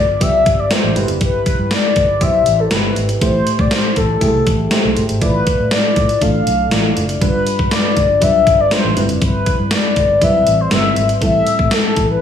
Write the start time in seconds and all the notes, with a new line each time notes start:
Already playing: G1 G2 B3 F4 G4 D5
0.20 B1 B3 F4 G4 D5 E5, kick, closed hi-hat
0.46 G1, kick, closed hi-hat
0.59 D5
0.71 B3 F4 G4 C5 D5, snare, closed hi-hat
0.84 A1
0.95 G1 G2 B2 E4 G4 B4, closed hi-hat
1.03 B4
1.08 F#1, closed hi-hat
1.21 G1 B4, kick, closed hi-hat
1.46 kick, closed hi-hat
1.59 G2
1.71 D5, snare, closed hi-hat
1.96 G1, kick, closed hi-hat
2.21 B1 B2 E4 G4 C5 E5, kick, closed hi-hat
2.46 A1, closed hi-hat
2.60 A4
2.71 G1 B2 E4 G4 B4, snare, closed hi-hat
2.96 G#1, closed hi-hat
3.09 closed hi-hat
3.21 A1 A2 A3 E4 G4 C5, kick, closed hi-hat
3.47 closed hi-hat
3.59 A2 D5, kick
3.71 C5, snare, closed hi-hat
3.96 A1 A4, kick, closed hi-hat
4.21 C2 A3 E4 G4 G#4, kick, closed hi-hat
4.28 A4
4.47 A1, kick, closed hi-hat
4.71 A3 E4 G4 C5, snare, closed hi-hat
4.85 B1
4.97 G1, closed hi-hat
5.09 G#1, closed hi-hat
5.21 A1 A2 A3 E4 F4 B4 D5, kick, closed hi-hat
5.47 kick, closed hi-hat
5.59 A2
5.71 D5, snare, closed hi-hat
5.96 A2, kick, closed hi-hat
6.09 closed hi-hat
6.21 A1 A3 D4 F4 A4 F5, kick, closed hi-hat
6.47 B1, closed hi-hat
6.71 A1 A3 E4 F4 D5, snare, closed hi-hat
6.97 F#1, closed hi-hat
7.09 closed hi-hat
7.21 G1 G2 G3 D4 F4 B4, kick, closed hi-hat
7.47 closed hi-hat
7.59 G2, kick
7.71 D5, snare, closed hi-hat
7.97 G1, kick, closed hi-hat
8.21 B1 G3 D4 F4 B4 E5, kick, closed hi-hat
8.47 G1, kick, closed hi-hat
8.60 D5
8.71 G3 D4 F4 B4 C5, snare, closed hi-hat
8.84 A1
8.96 G1 G2 G3 C4 E4 B4, closed hi-hat
9.09 F#1, closed hi-hat
9.22 G1 B4, kick, closed hi-hat
9.46 kick, closed hi-hat
9.59 G2
9.71 D5, snare, closed hi-hat
9.96 G1, kick, closed hi-hat
10.21 B1 G3 C4 E4 B4 E5, kick, closed hi-hat
10.47 A1, closed hi-hat
10.61 C5
10.71 G1 G3 C4 E4 B4 E5, snare, closed hi-hat
10.96 G#1, closed hi-hat
11.09 closed hi-hat
11.21 A1 A2 G3 C4 E4 A4 E5, kick, closed hi-hat
11.47 closed hi-hat
11.59 A2, kick
11.71 A4, snare, closed hi-hat
11.96 A1, kick, closed hi-hat
12.10 B4